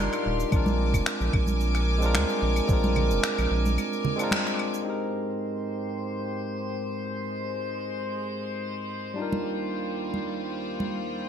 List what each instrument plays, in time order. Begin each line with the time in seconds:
Already playing: tine electric piano G3 D4 D#4 F4 A#4, string section G4 F5 C6
0.13 finger snap, cabasa, claves
0.26 analog synth bass D#1
0.40 cabasa
0.48 tine electric piano G#3 C4 D4, kick, cabasa, claves
0.53 analog synth bass A#1, tine electric piano F4 A#4, string section A#4 G#5 D6
0.66 high conga, cabasa
0.94 analog synth bass F1, kick, cabasa, claves
1.06 finger snap, cabasa
1.21 analog synth bass A#1, cabasa
1.33 analog synth bass A#1, kick, claves
1.47 high conga, cabasa
1.61 cabasa
1.75 finger snap, cabasa, claves
1.98 tine electric piano G#3 C4, cabasa
2.02 tine electric piano D4 F4 A#4
2.15 analog synth bass D2, finger snap, high conga, cabasa, claves
2.29 cabasa
2.42 analog synth bass A#1
2.56 cabasa, claves
2.65 analog synth bass A#1, tine electric piano G#3 C4, kick, cabasa
2.69 tine electric piano D4 F4 A#4
2.83 high conga, cabasa
2.96 low conga, claves
3.11 analog synth bass F1, cabasa
3.23 finger snap, cabasa
3.38 analog synth bass A#1, cabasa, claves
3.51 analog synth bass A#1
3.65 high conga, cabasa
3.78 cabasa, claves
3.93 cabasa
4.05 low conga
4.16 tine electric piano G#3 C4 D4, cabasa, claves
4.21 tine electric piano F4 A#4
4.31 finger snap, high conga, cabasa
4.47 finger snap, cabasa
4.59 claves
4.74 cabasa
4.82 string section G#2 G4 C5, tine electric piano G#3 C4 D#4, synth texture C5 C6
4.88 tine electric piano G4 A#4
7.01 string section G#3
9.14 string section D#2 G3 F4, tine electric piano G3 D4 D#4
9.20 tine electric piano F4 A#4
9.33 high conga
10.14 high conga
10.80 high conga